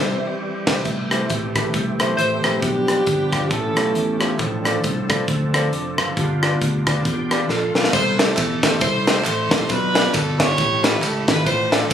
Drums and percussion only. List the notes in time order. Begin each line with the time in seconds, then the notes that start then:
0.67 kick, snare, crash
0.85 kick, closed hi-hat
1.11 cross-stick, closed hi-hat
1.30 kick, closed hi-hat
1.56 kick, cross-stick, closed hi-hat
1.74 kick, closed hi-hat
2.00 cross-stick, closed hi-hat
2.19 closed hi-hat
2.44 cross-stick, closed hi-hat
2.62 kick, closed hi-hat
2.88 cross-stick, closed hi-hat
3.07 kick, closed hi-hat
3.33 kick, cross-stick, closed hi-hat
3.51 kick, closed hi-hat
3.77 cross-stick, closed hi-hat
3.95 closed hi-hat
4.21 cross-stick, closed hi-hat
4.39 kick, closed hi-hat
4.65 cross-stick, closed hi-hat
4.84 kick, closed hi-hat
5.10 kick, cross-stick, closed hi-hat
5.28 kick, closed hi-hat
5.54 cross-stick, closed hi-hat
5.73 closed hi-hat
5.98 cross-stick, closed hi-hat
6.17 kick, closed hi-hat
6.43 cross-stick, closed hi-hat
6.62 kick, closed hi-hat
6.87 kick, cross-stick, closed hi-hat
7.05 kick, closed hi-hat
7.31 cross-stick, closed hi-hat
7.49 snare
7.75 snare
7.84 snare
7.93 kick, crash, tambourine
8.19 snare, ride bell, tambourine
8.37 kick, clap, ride bell, tambourine
8.63 kick, snare, ride bell, tambourine
8.81 kick, ride bell, tambourine
9.07 snare, ride bell, tambourine
9.25 clap, ride bell, tambourine
9.51 kick, snare, ride bell, tambourine
9.69 kick, ride bell, tambourine
9.95 snare, ride bell, tambourine
10.14 kick, clap, ride bell, tambourine
10.40 kick, snare, ride bell, tambourine
10.58 kick, ride bell, tambourine
10.84 snare, ride bell, tambourine
11.02 clap, ride bell, tambourine
11.28 kick, snare, ride bell, tambourine
11.47 kick, ride bell, tambourine
11.72 snare, ride bell, tambourine